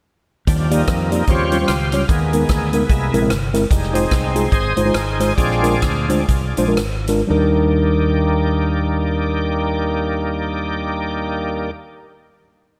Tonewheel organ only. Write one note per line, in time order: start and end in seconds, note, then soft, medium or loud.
0.47 1.24 F3 soft
0.47 0.72 G3 soft
0.47 0.63 D4 soft
0.64 0.72 D4 medium
0.73 1.25 G3 medium
0.73 1.26 A#3 medium
0.73 1.31 D#4 medium
1.29 1.58 C#3 medium
1.29 1.58 F3 soft
1.29 1.58 G3 soft
1.29 1.58 C4 medium
1.29 2.06 F4 medium
1.29 2.06 G4 medium
1.29 1.66 C#5 loud
1.67 1.90 C5 medium
1.91 1.99 C5 medium
2.08 2.70 G#3 soft
2.08 2.71 A#3 soft
2.08 3.27 B3 medium
2.08 3.26 G#4 medium
2.90 3.19 G#3 soft
2.90 3.20 A#3 soft
2.90 3.20 E4 medium
3.70 3.99 G3 soft
3.70 3.94 G#3 soft
3.70 3.94 D#4 soft
3.95 4.73 G#3 medium
3.95 4.74 C4 medium
3.95 4.54 D#4 medium
4.53 4.77 G#4 medium
4.53 4.75 C5 medium
4.53 4.78 D#5 loud
4.76 5.34 D#4 medium
4.76 5.34 G#4 medium
4.76 5.33 C5 medium
5.36 6.06 G#3 soft
5.36 6.06 C4 soft
5.36 6.06 D4 medium
5.36 6.74 F4 medium
5.36 6.74 G#4 medium
5.36 6.73 D5 medium
6.08 6.26 G#3 soft
6.08 6.26 C4 soft
6.08 6.27 D4 soft
7.30 11.71 D#3 medium
7.30 11.70 A#3 soft
7.30 11.71 G4 medium
7.30 11.71 D5 medium